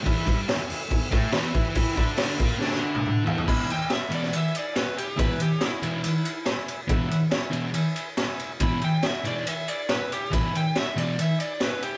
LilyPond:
<<
  \new Staff \with { instrumentName = "Transistor combo organ" } { \time 4/4 \key e \mixolydian \tempo 4 = 140 << { r1 | r4. b''8 gis''8 gis''8 fis''8 e''8 | r1 | r1 |
r1 | r1 | r1 | } \\ { <b' e'' b''>4 <b' e'' gis''>4 <b' e'' gis''>8 <b' e'' gis''>8 <b' e'' b''>4 | <b' e'' b''>4 <b' e'' b''>4 <b' e'' fis''>8 <b' e'' b''>8 <b' e''>4 | <b' e'' gis''>4 <b' e'' b''>4 <b' e'' gis''>4 <b' e'' gis''>4 | <b' e'' gis''>4 <b' e'' gis''>4 <b' e'' fis''>4 <b' e'' gis''>4 |
<b' e'' fis''>4 <b' e'' gis''>4 <b' e'' gis''>4 <b' e'' gis''>4 | <b' e'' gis''>4 <b' e'' gis''>4 <b' e'' gis''>4 <b' e'' gis''>4 | <b' e'' gis''>4 <b' e'' gis''>4 <b' e'' gis''>4 <b' e'' gis''>4 | } >> }
  \new Staff \with { instrumentName = "Electric slide guitar" } { \time 4/4 \key e \mixolydian r1 | r1 | b''8 g''8 e''8 d''8 e''8 d''8 b'8 g'8 | b'8 g'8 e'2 r4 |
r1 | b''8 g''8 e''8 d''8 e''8 d''8 b'8 g'8 | b''8 g''8 e''8 d''8 e''8 d''8 b'8 g'8 | }
  \new Staff \with { instrumentName = "Distorted electric guitar" } { \clef bass \time 4/4 \key e \mixolydian <e, e>8 <g, g>8 e,8 r8 e,8 <a, a>8 <e, e>8 <e e'>8~ | <e e'>8 <d d'>4 <ais, ais>8 <d d'>4. <e, e>8 | <e, b, e>8 r4 <e, b, e>8 r2 | <e, b, e>8 r4 <e, b, e>8 r2 |
<e, b, e>8 r4 <e, b, e>8 r2 | <e, b, e>8 r4 <e, b, e>8 r2 | <e, b, e>8 r4 <e, b, e>8 r2 | }
  \new DrumStaff \with { instrumentName = "Drums" } \drummode { \time 4/4 <cymc bd>8 <cymc bd>8 <cymc sn>8 cymc8 <cymc bd>8 <cymc bd>8 <cymc sn>8 <cymc bd>8 | <cymc bd>8 <cymc bd>8 <cymc sn>8 <cymc bd>8 sn16 sn8 tommh16 toml8 tomfh16 tomfh16 | <cymc bd>8 cymr8 <cymr sn>8 cymr16 sn16 cymr8 cymr8 <cymr sn>8 cymr8 | <bd cymr>8 cymr8 <cymr sn>8 cymr8 cymr8 cymr8 <cymr sn>8 cymr8 |
<bd cymr>8 cymr8 <cymr sn>8 cymr8 cymr8 cymr8 <cymr sn>8 cymr8 | <bd cymr>8 cymr8 <cymr sn>8 cymr8 cymr8 cymr8 <cymr sn>8 cymr8 | <bd cymr>8 cymr8 <cymr sn>8 cymr8 cymr8 cymr8 <cymr sn>8 cymr8 | }
>>